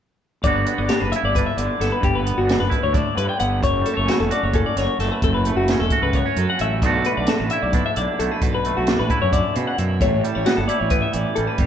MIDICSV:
0, 0, Header, 1, 5, 480
1, 0, Start_track
1, 0, Tempo, 455235
1, 466, Time_signature, 7, 3, 24, 8
1, 12300, End_track
2, 0, Start_track
2, 0, Title_t, "Clean electric guitar"
2, 0, Program_c, 0, 27
2, 465, Note_on_c, 0, 74, 70
2, 705, Note_off_c, 0, 74, 0
2, 705, Note_on_c, 0, 71, 60
2, 825, Note_off_c, 0, 71, 0
2, 825, Note_on_c, 0, 74, 56
2, 939, Note_on_c, 0, 67, 74
2, 946, Note_off_c, 0, 74, 0
2, 1060, Note_off_c, 0, 67, 0
2, 1060, Note_on_c, 0, 71, 58
2, 1181, Note_on_c, 0, 76, 65
2, 1184, Note_off_c, 0, 71, 0
2, 1304, Note_off_c, 0, 76, 0
2, 1317, Note_on_c, 0, 74, 57
2, 1431, Note_on_c, 0, 71, 64
2, 1432, Note_off_c, 0, 74, 0
2, 1542, Note_on_c, 0, 76, 65
2, 1550, Note_off_c, 0, 71, 0
2, 1661, Note_off_c, 0, 76, 0
2, 1661, Note_on_c, 0, 74, 62
2, 1905, Note_off_c, 0, 74, 0
2, 1909, Note_on_c, 0, 69, 60
2, 2026, Note_on_c, 0, 71, 61
2, 2029, Note_off_c, 0, 69, 0
2, 2147, Note_off_c, 0, 71, 0
2, 2152, Note_on_c, 0, 67, 73
2, 2270, Note_off_c, 0, 67, 0
2, 2270, Note_on_c, 0, 71, 55
2, 2507, Note_on_c, 0, 66, 55
2, 2509, Note_off_c, 0, 71, 0
2, 2742, Note_on_c, 0, 71, 60
2, 2748, Note_off_c, 0, 66, 0
2, 2983, Note_off_c, 0, 71, 0
2, 2988, Note_on_c, 0, 73, 59
2, 3109, Note_off_c, 0, 73, 0
2, 3113, Note_on_c, 0, 74, 63
2, 3343, Note_off_c, 0, 74, 0
2, 3347, Note_on_c, 0, 71, 67
2, 3464, Note_off_c, 0, 71, 0
2, 3469, Note_on_c, 0, 79, 61
2, 3582, Note_off_c, 0, 79, 0
2, 3586, Note_on_c, 0, 78, 62
2, 3828, Note_off_c, 0, 78, 0
2, 3833, Note_on_c, 0, 73, 76
2, 4067, Note_on_c, 0, 69, 64
2, 4072, Note_off_c, 0, 73, 0
2, 4185, Note_on_c, 0, 73, 59
2, 4189, Note_off_c, 0, 69, 0
2, 4308, Note_off_c, 0, 73, 0
2, 4308, Note_on_c, 0, 66, 74
2, 4424, Note_off_c, 0, 66, 0
2, 4429, Note_on_c, 0, 69, 65
2, 4550, Note_off_c, 0, 69, 0
2, 4557, Note_on_c, 0, 74, 66
2, 4676, Note_off_c, 0, 74, 0
2, 4676, Note_on_c, 0, 73, 59
2, 4794, Note_off_c, 0, 73, 0
2, 4803, Note_on_c, 0, 69, 72
2, 4914, Note_on_c, 0, 74, 64
2, 4917, Note_off_c, 0, 69, 0
2, 5033, Note_off_c, 0, 74, 0
2, 5042, Note_on_c, 0, 73, 65
2, 5270, Note_off_c, 0, 73, 0
2, 5274, Note_on_c, 0, 69, 58
2, 5395, Note_off_c, 0, 69, 0
2, 5395, Note_on_c, 0, 71, 63
2, 5513, Note_off_c, 0, 71, 0
2, 5523, Note_on_c, 0, 69, 77
2, 5629, Note_off_c, 0, 69, 0
2, 5633, Note_on_c, 0, 71, 54
2, 5870, Note_on_c, 0, 66, 60
2, 5872, Note_off_c, 0, 71, 0
2, 6111, Note_off_c, 0, 66, 0
2, 6116, Note_on_c, 0, 69, 64
2, 6351, Note_off_c, 0, 69, 0
2, 6355, Note_on_c, 0, 71, 59
2, 6482, Note_off_c, 0, 71, 0
2, 6482, Note_on_c, 0, 73, 66
2, 6730, Note_off_c, 0, 73, 0
2, 6730, Note_on_c, 0, 69, 62
2, 6841, Note_off_c, 0, 69, 0
2, 6851, Note_on_c, 0, 78, 58
2, 6962, Note_off_c, 0, 78, 0
2, 6973, Note_on_c, 0, 76, 55
2, 7209, Note_off_c, 0, 76, 0
2, 7209, Note_on_c, 0, 74, 68
2, 7441, Note_off_c, 0, 74, 0
2, 7446, Note_on_c, 0, 71, 62
2, 7559, Note_off_c, 0, 71, 0
2, 7563, Note_on_c, 0, 74, 57
2, 7678, Note_off_c, 0, 74, 0
2, 7687, Note_on_c, 0, 69, 70
2, 7803, Note_off_c, 0, 69, 0
2, 7803, Note_on_c, 0, 71, 63
2, 7917, Note_on_c, 0, 76, 65
2, 7918, Note_off_c, 0, 71, 0
2, 8040, Note_off_c, 0, 76, 0
2, 8040, Note_on_c, 0, 74, 59
2, 8162, Note_off_c, 0, 74, 0
2, 8162, Note_on_c, 0, 71, 67
2, 8277, Note_off_c, 0, 71, 0
2, 8285, Note_on_c, 0, 76, 61
2, 8399, Note_off_c, 0, 76, 0
2, 8405, Note_on_c, 0, 74, 65
2, 8638, Note_off_c, 0, 74, 0
2, 8639, Note_on_c, 0, 69, 58
2, 8768, Note_off_c, 0, 69, 0
2, 8768, Note_on_c, 0, 71, 60
2, 8885, Note_off_c, 0, 71, 0
2, 8885, Note_on_c, 0, 69, 74
2, 8999, Note_off_c, 0, 69, 0
2, 9011, Note_on_c, 0, 71, 54
2, 9242, Note_off_c, 0, 71, 0
2, 9247, Note_on_c, 0, 66, 62
2, 9479, Note_off_c, 0, 66, 0
2, 9483, Note_on_c, 0, 71, 59
2, 9714, Note_off_c, 0, 71, 0
2, 9718, Note_on_c, 0, 73, 65
2, 9830, Note_off_c, 0, 73, 0
2, 9834, Note_on_c, 0, 74, 70
2, 10079, Note_off_c, 0, 74, 0
2, 10079, Note_on_c, 0, 71, 66
2, 10195, Note_off_c, 0, 71, 0
2, 10200, Note_on_c, 0, 78, 62
2, 10320, Note_off_c, 0, 78, 0
2, 10320, Note_on_c, 0, 76, 59
2, 10555, Note_off_c, 0, 76, 0
2, 10563, Note_on_c, 0, 73, 71
2, 10797, Note_off_c, 0, 73, 0
2, 10797, Note_on_c, 0, 69, 61
2, 10915, Note_off_c, 0, 69, 0
2, 10915, Note_on_c, 0, 73, 62
2, 11030, Note_on_c, 0, 66, 74
2, 11033, Note_off_c, 0, 73, 0
2, 11145, Note_on_c, 0, 69, 65
2, 11150, Note_off_c, 0, 66, 0
2, 11259, Note_on_c, 0, 74, 65
2, 11268, Note_off_c, 0, 69, 0
2, 11381, Note_off_c, 0, 74, 0
2, 11381, Note_on_c, 0, 73, 62
2, 11503, Note_on_c, 0, 71, 70
2, 11506, Note_off_c, 0, 73, 0
2, 11619, Note_on_c, 0, 76, 60
2, 11626, Note_off_c, 0, 71, 0
2, 11737, Note_off_c, 0, 76, 0
2, 11737, Note_on_c, 0, 74, 61
2, 11974, Note_on_c, 0, 69, 62
2, 11983, Note_off_c, 0, 74, 0
2, 12097, Note_off_c, 0, 69, 0
2, 12097, Note_on_c, 0, 71, 60
2, 12219, Note_off_c, 0, 71, 0
2, 12219, Note_on_c, 0, 67, 73
2, 12300, Note_off_c, 0, 67, 0
2, 12300, End_track
3, 0, Start_track
3, 0, Title_t, "Clean electric guitar"
3, 0, Program_c, 1, 27
3, 466, Note_on_c, 1, 43, 57
3, 473, Note_on_c, 1, 50, 47
3, 484, Note_on_c, 1, 59, 42
3, 492, Note_on_c, 1, 62, 53
3, 497, Note_on_c, 1, 66, 55
3, 701, Note_off_c, 1, 59, 0
3, 705, Note_on_c, 1, 59, 47
3, 963, Note_off_c, 1, 62, 0
3, 967, Note_on_c, 1, 62, 50
3, 1220, Note_off_c, 1, 66, 0
3, 1224, Note_on_c, 1, 64, 52
3, 1437, Note_off_c, 1, 62, 0
3, 1458, Note_on_c, 1, 62, 45
3, 1655, Note_off_c, 1, 50, 0
3, 1668, Note_on_c, 1, 50, 50
3, 1888, Note_off_c, 1, 59, 0
3, 1901, Note_on_c, 1, 59, 45
3, 2110, Note_off_c, 1, 43, 0
3, 2116, Note_off_c, 1, 59, 0
3, 2122, Note_on_c, 1, 43, 63
3, 2135, Note_off_c, 1, 62, 0
3, 2167, Note_off_c, 1, 64, 0
3, 2386, Note_on_c, 1, 59, 51
3, 2602, Note_on_c, 1, 62, 49
3, 2844, Note_on_c, 1, 64, 50
3, 3075, Note_off_c, 1, 62, 0
3, 3088, Note_on_c, 1, 62, 46
3, 3308, Note_off_c, 1, 50, 0
3, 3321, Note_on_c, 1, 50, 50
3, 3565, Note_off_c, 1, 59, 0
3, 3578, Note_on_c, 1, 59, 51
3, 3788, Note_off_c, 1, 43, 0
3, 3791, Note_off_c, 1, 62, 0
3, 3795, Note_off_c, 1, 59, 0
3, 3802, Note_on_c, 1, 42, 64
3, 3816, Note_off_c, 1, 50, 0
3, 4024, Note_on_c, 1, 55, 49
3, 4150, Note_off_c, 1, 55, 0
3, 4150, Note_on_c, 1, 57, 42
3, 4278, Note_on_c, 1, 61, 53
3, 4537, Note_off_c, 1, 64, 0
3, 4542, Note_on_c, 1, 66, 55
3, 4775, Note_off_c, 1, 61, 0
3, 4788, Note_on_c, 1, 61, 49
3, 5024, Note_on_c, 1, 54, 52
3, 5251, Note_off_c, 1, 57, 0
3, 5281, Note_on_c, 1, 57, 44
3, 5469, Note_off_c, 1, 42, 0
3, 5481, Note_off_c, 1, 61, 0
3, 5523, Note_on_c, 1, 42, 61
3, 5762, Note_off_c, 1, 57, 0
3, 5766, Note_on_c, 1, 57, 52
3, 6020, Note_on_c, 1, 61, 48
3, 6240, Note_off_c, 1, 66, 0
3, 6244, Note_on_c, 1, 66, 50
3, 6483, Note_off_c, 1, 61, 0
3, 6488, Note_on_c, 1, 59, 52
3, 6596, Note_off_c, 1, 59, 0
3, 6596, Note_on_c, 1, 61, 38
3, 6730, Note_off_c, 1, 54, 0
3, 6734, Note_on_c, 1, 54, 53
3, 6973, Note_off_c, 1, 57, 0
3, 6977, Note_on_c, 1, 57, 43
3, 7170, Note_off_c, 1, 42, 0
3, 7194, Note_off_c, 1, 61, 0
3, 7204, Note_on_c, 1, 47, 61
3, 7206, Note_off_c, 1, 54, 0
3, 7210, Note_on_c, 1, 50, 52
3, 7213, Note_off_c, 1, 57, 0
3, 7217, Note_on_c, 1, 57, 52
3, 7229, Note_on_c, 1, 62, 53
3, 7233, Note_off_c, 1, 66, 0
3, 7237, Note_on_c, 1, 66, 52
3, 7463, Note_off_c, 1, 57, 0
3, 7468, Note_on_c, 1, 57, 49
3, 7700, Note_off_c, 1, 62, 0
3, 7705, Note_on_c, 1, 62, 45
3, 7934, Note_off_c, 1, 66, 0
3, 7938, Note_on_c, 1, 64, 48
3, 8151, Note_off_c, 1, 62, 0
3, 8163, Note_on_c, 1, 62, 52
3, 8390, Note_off_c, 1, 50, 0
3, 8403, Note_on_c, 1, 50, 55
3, 8643, Note_off_c, 1, 57, 0
3, 8647, Note_on_c, 1, 57, 47
3, 8849, Note_off_c, 1, 47, 0
3, 8849, Note_off_c, 1, 62, 0
3, 8875, Note_on_c, 1, 47, 63
3, 8885, Note_off_c, 1, 64, 0
3, 8907, Note_off_c, 1, 57, 0
3, 9129, Note_on_c, 1, 57, 52
3, 9373, Note_on_c, 1, 62, 51
3, 9601, Note_on_c, 1, 64, 51
3, 9819, Note_off_c, 1, 50, 0
3, 9832, Note_on_c, 1, 50, 52
3, 10072, Note_off_c, 1, 47, 0
3, 10072, Note_off_c, 1, 50, 0
3, 10077, Note_on_c, 1, 49, 56
3, 10314, Note_off_c, 1, 49, 0
3, 10325, Note_on_c, 1, 47, 52
3, 10533, Note_off_c, 1, 62, 0
3, 10551, Note_off_c, 1, 47, 0
3, 10555, Note_on_c, 1, 45, 62
3, 10789, Note_off_c, 1, 57, 0
3, 10794, Note_on_c, 1, 55, 51
3, 11047, Note_on_c, 1, 59, 49
3, 11264, Note_off_c, 1, 64, 0
3, 11277, Note_on_c, 1, 64, 52
3, 11504, Note_off_c, 1, 59, 0
3, 11508, Note_on_c, 1, 59, 48
3, 11739, Note_on_c, 1, 52, 52
3, 11989, Note_off_c, 1, 55, 0
3, 11993, Note_on_c, 1, 55, 47
3, 12195, Note_off_c, 1, 52, 0
3, 12226, Note_on_c, 1, 43, 61
3, 12231, Note_off_c, 1, 45, 0
3, 12232, Note_off_c, 1, 64, 0
3, 12300, Note_off_c, 1, 43, 0
3, 12300, Note_off_c, 1, 55, 0
3, 12300, Note_off_c, 1, 59, 0
3, 12300, End_track
4, 0, Start_track
4, 0, Title_t, "Fingered electric bass"
4, 0, Program_c, 2, 33
4, 465, Note_on_c, 2, 31, 80
4, 667, Note_off_c, 2, 31, 0
4, 827, Note_on_c, 2, 31, 70
4, 927, Note_off_c, 2, 31, 0
4, 1071, Note_on_c, 2, 30, 74
4, 1170, Note_off_c, 2, 30, 0
4, 1299, Note_on_c, 2, 31, 80
4, 1504, Note_off_c, 2, 31, 0
4, 1657, Note_on_c, 2, 31, 76
4, 1762, Note_off_c, 2, 31, 0
4, 1901, Note_on_c, 2, 31, 73
4, 2005, Note_off_c, 2, 31, 0
4, 2143, Note_on_c, 2, 31, 79
4, 2447, Note_off_c, 2, 31, 0
4, 2503, Note_on_c, 2, 31, 70
4, 2707, Note_off_c, 2, 31, 0
4, 2749, Note_on_c, 2, 30, 82
4, 2850, Note_off_c, 2, 30, 0
4, 2983, Note_on_c, 2, 38, 70
4, 3187, Note_off_c, 2, 38, 0
4, 3345, Note_on_c, 2, 43, 79
4, 3448, Note_off_c, 2, 43, 0
4, 3589, Note_on_c, 2, 31, 71
4, 3826, Note_off_c, 2, 31, 0
4, 3826, Note_on_c, 2, 30, 84
4, 4029, Note_off_c, 2, 30, 0
4, 4190, Note_on_c, 2, 30, 71
4, 4291, Note_off_c, 2, 30, 0
4, 4429, Note_on_c, 2, 28, 77
4, 4530, Note_off_c, 2, 28, 0
4, 4673, Note_on_c, 2, 30, 88
4, 4873, Note_off_c, 2, 30, 0
4, 5023, Note_on_c, 2, 30, 76
4, 5127, Note_off_c, 2, 30, 0
4, 5259, Note_on_c, 2, 30, 73
4, 5365, Note_off_c, 2, 30, 0
4, 5510, Note_on_c, 2, 30, 81
4, 5812, Note_off_c, 2, 30, 0
4, 5857, Note_on_c, 2, 30, 67
4, 6064, Note_off_c, 2, 30, 0
4, 6108, Note_on_c, 2, 28, 75
4, 6211, Note_off_c, 2, 28, 0
4, 6348, Note_on_c, 2, 37, 70
4, 6551, Note_off_c, 2, 37, 0
4, 6711, Note_on_c, 2, 42, 72
4, 6812, Note_off_c, 2, 42, 0
4, 6959, Note_on_c, 2, 33, 67
4, 7196, Note_off_c, 2, 33, 0
4, 7196, Note_on_c, 2, 35, 91
4, 7396, Note_off_c, 2, 35, 0
4, 7565, Note_on_c, 2, 35, 73
4, 7660, Note_off_c, 2, 35, 0
4, 7803, Note_on_c, 2, 33, 78
4, 7899, Note_off_c, 2, 33, 0
4, 8043, Note_on_c, 2, 35, 81
4, 8240, Note_off_c, 2, 35, 0
4, 8403, Note_on_c, 2, 35, 78
4, 8499, Note_off_c, 2, 35, 0
4, 8641, Note_on_c, 2, 35, 70
4, 8738, Note_off_c, 2, 35, 0
4, 8880, Note_on_c, 2, 35, 80
4, 9178, Note_off_c, 2, 35, 0
4, 9254, Note_on_c, 2, 35, 70
4, 9446, Note_off_c, 2, 35, 0
4, 9486, Note_on_c, 2, 33, 80
4, 9581, Note_off_c, 2, 33, 0
4, 9726, Note_on_c, 2, 42, 74
4, 9921, Note_off_c, 2, 42, 0
4, 10084, Note_on_c, 2, 47, 78
4, 10179, Note_off_c, 2, 47, 0
4, 10315, Note_on_c, 2, 42, 68
4, 10561, Note_on_c, 2, 33, 82
4, 10577, Note_off_c, 2, 42, 0
4, 10758, Note_off_c, 2, 33, 0
4, 10924, Note_on_c, 2, 33, 72
4, 11019, Note_off_c, 2, 33, 0
4, 11155, Note_on_c, 2, 31, 86
4, 11253, Note_off_c, 2, 31, 0
4, 11397, Note_on_c, 2, 33, 78
4, 11595, Note_off_c, 2, 33, 0
4, 11748, Note_on_c, 2, 33, 78
4, 11849, Note_off_c, 2, 33, 0
4, 11995, Note_on_c, 2, 33, 71
4, 12093, Note_off_c, 2, 33, 0
4, 12217, Note_on_c, 2, 31, 79
4, 12300, Note_off_c, 2, 31, 0
4, 12300, End_track
5, 0, Start_track
5, 0, Title_t, "Drums"
5, 461, Note_on_c, 9, 42, 65
5, 462, Note_on_c, 9, 36, 93
5, 567, Note_off_c, 9, 36, 0
5, 567, Note_off_c, 9, 42, 0
5, 702, Note_on_c, 9, 42, 48
5, 807, Note_off_c, 9, 42, 0
5, 937, Note_on_c, 9, 42, 70
5, 950, Note_on_c, 9, 38, 88
5, 1042, Note_off_c, 9, 42, 0
5, 1055, Note_off_c, 9, 38, 0
5, 1187, Note_on_c, 9, 42, 58
5, 1292, Note_off_c, 9, 42, 0
5, 1425, Note_on_c, 9, 36, 86
5, 1431, Note_on_c, 9, 42, 79
5, 1531, Note_off_c, 9, 36, 0
5, 1537, Note_off_c, 9, 42, 0
5, 1666, Note_on_c, 9, 42, 59
5, 1772, Note_off_c, 9, 42, 0
5, 1911, Note_on_c, 9, 42, 58
5, 1924, Note_on_c, 9, 38, 27
5, 2016, Note_off_c, 9, 42, 0
5, 2029, Note_off_c, 9, 38, 0
5, 2143, Note_on_c, 9, 36, 88
5, 2144, Note_on_c, 9, 42, 64
5, 2248, Note_off_c, 9, 36, 0
5, 2250, Note_off_c, 9, 42, 0
5, 2390, Note_on_c, 9, 42, 48
5, 2496, Note_off_c, 9, 42, 0
5, 2629, Note_on_c, 9, 42, 63
5, 2641, Note_on_c, 9, 38, 90
5, 2734, Note_off_c, 9, 42, 0
5, 2747, Note_off_c, 9, 38, 0
5, 2863, Note_on_c, 9, 36, 68
5, 2868, Note_on_c, 9, 42, 52
5, 2968, Note_off_c, 9, 36, 0
5, 2974, Note_off_c, 9, 42, 0
5, 3103, Note_on_c, 9, 36, 100
5, 3105, Note_on_c, 9, 42, 66
5, 3209, Note_off_c, 9, 36, 0
5, 3210, Note_off_c, 9, 42, 0
5, 3351, Note_on_c, 9, 42, 51
5, 3456, Note_off_c, 9, 42, 0
5, 3583, Note_on_c, 9, 42, 50
5, 3688, Note_off_c, 9, 42, 0
5, 3824, Note_on_c, 9, 36, 83
5, 3831, Note_on_c, 9, 42, 65
5, 3929, Note_off_c, 9, 36, 0
5, 3936, Note_off_c, 9, 42, 0
5, 4067, Note_on_c, 9, 42, 44
5, 4173, Note_off_c, 9, 42, 0
5, 4306, Note_on_c, 9, 42, 64
5, 4319, Note_on_c, 9, 38, 96
5, 4411, Note_off_c, 9, 42, 0
5, 4424, Note_off_c, 9, 38, 0
5, 4545, Note_on_c, 9, 42, 57
5, 4650, Note_off_c, 9, 42, 0
5, 4782, Note_on_c, 9, 36, 93
5, 4782, Note_on_c, 9, 42, 73
5, 4888, Note_off_c, 9, 36, 0
5, 4888, Note_off_c, 9, 42, 0
5, 5028, Note_on_c, 9, 42, 55
5, 5041, Note_on_c, 9, 38, 30
5, 5134, Note_off_c, 9, 42, 0
5, 5147, Note_off_c, 9, 38, 0
5, 5269, Note_on_c, 9, 42, 49
5, 5282, Note_on_c, 9, 38, 27
5, 5375, Note_off_c, 9, 42, 0
5, 5388, Note_off_c, 9, 38, 0
5, 5506, Note_on_c, 9, 36, 92
5, 5507, Note_on_c, 9, 42, 73
5, 5612, Note_off_c, 9, 36, 0
5, 5612, Note_off_c, 9, 42, 0
5, 5748, Note_on_c, 9, 42, 48
5, 5854, Note_off_c, 9, 42, 0
5, 5988, Note_on_c, 9, 42, 72
5, 6001, Note_on_c, 9, 38, 88
5, 6094, Note_off_c, 9, 42, 0
5, 6107, Note_off_c, 9, 38, 0
5, 6225, Note_on_c, 9, 42, 58
5, 6226, Note_on_c, 9, 36, 70
5, 6331, Note_off_c, 9, 42, 0
5, 6332, Note_off_c, 9, 36, 0
5, 6467, Note_on_c, 9, 36, 89
5, 6467, Note_on_c, 9, 42, 72
5, 6572, Note_off_c, 9, 36, 0
5, 6573, Note_off_c, 9, 42, 0
5, 6712, Note_on_c, 9, 42, 55
5, 6817, Note_off_c, 9, 42, 0
5, 6950, Note_on_c, 9, 42, 49
5, 7055, Note_off_c, 9, 42, 0
5, 7191, Note_on_c, 9, 36, 81
5, 7194, Note_on_c, 9, 42, 67
5, 7297, Note_off_c, 9, 36, 0
5, 7299, Note_off_c, 9, 42, 0
5, 7429, Note_on_c, 9, 42, 44
5, 7535, Note_off_c, 9, 42, 0
5, 7662, Note_on_c, 9, 42, 63
5, 7675, Note_on_c, 9, 38, 93
5, 7768, Note_off_c, 9, 42, 0
5, 7781, Note_off_c, 9, 38, 0
5, 7907, Note_on_c, 9, 42, 49
5, 8012, Note_off_c, 9, 42, 0
5, 8151, Note_on_c, 9, 42, 70
5, 8153, Note_on_c, 9, 36, 94
5, 8257, Note_off_c, 9, 42, 0
5, 8258, Note_off_c, 9, 36, 0
5, 8395, Note_on_c, 9, 42, 52
5, 8501, Note_off_c, 9, 42, 0
5, 8643, Note_on_c, 9, 42, 52
5, 8749, Note_off_c, 9, 42, 0
5, 8875, Note_on_c, 9, 36, 91
5, 8875, Note_on_c, 9, 42, 71
5, 8980, Note_off_c, 9, 36, 0
5, 8981, Note_off_c, 9, 42, 0
5, 9118, Note_on_c, 9, 42, 45
5, 9223, Note_off_c, 9, 42, 0
5, 9351, Note_on_c, 9, 42, 70
5, 9364, Note_on_c, 9, 38, 96
5, 9456, Note_off_c, 9, 42, 0
5, 9469, Note_off_c, 9, 38, 0
5, 9593, Note_on_c, 9, 36, 70
5, 9596, Note_on_c, 9, 42, 54
5, 9699, Note_off_c, 9, 36, 0
5, 9702, Note_off_c, 9, 42, 0
5, 9835, Note_on_c, 9, 36, 90
5, 9837, Note_on_c, 9, 42, 81
5, 9940, Note_off_c, 9, 36, 0
5, 9943, Note_off_c, 9, 42, 0
5, 10076, Note_on_c, 9, 42, 53
5, 10182, Note_off_c, 9, 42, 0
5, 10316, Note_on_c, 9, 42, 52
5, 10421, Note_off_c, 9, 42, 0
5, 10552, Note_on_c, 9, 36, 88
5, 10557, Note_on_c, 9, 42, 71
5, 10658, Note_off_c, 9, 36, 0
5, 10662, Note_off_c, 9, 42, 0
5, 10802, Note_on_c, 9, 42, 48
5, 10907, Note_off_c, 9, 42, 0
5, 11030, Note_on_c, 9, 42, 74
5, 11042, Note_on_c, 9, 38, 88
5, 11135, Note_off_c, 9, 42, 0
5, 11148, Note_off_c, 9, 38, 0
5, 11269, Note_on_c, 9, 42, 54
5, 11374, Note_off_c, 9, 42, 0
5, 11496, Note_on_c, 9, 42, 68
5, 11502, Note_on_c, 9, 36, 92
5, 11602, Note_off_c, 9, 42, 0
5, 11608, Note_off_c, 9, 36, 0
5, 11740, Note_on_c, 9, 42, 53
5, 11845, Note_off_c, 9, 42, 0
5, 11979, Note_on_c, 9, 42, 50
5, 12084, Note_off_c, 9, 42, 0
5, 12211, Note_on_c, 9, 42, 62
5, 12216, Note_on_c, 9, 36, 87
5, 12300, Note_off_c, 9, 36, 0
5, 12300, Note_off_c, 9, 42, 0
5, 12300, End_track
0, 0, End_of_file